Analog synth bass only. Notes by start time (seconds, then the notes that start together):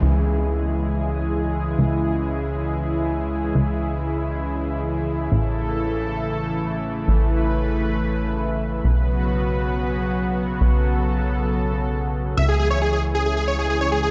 0.02 C#2
1.79 C#2
3.55 C#2
5.32 A1
7.08 A1
8.85 B1
10.61 B1
12.38 C#2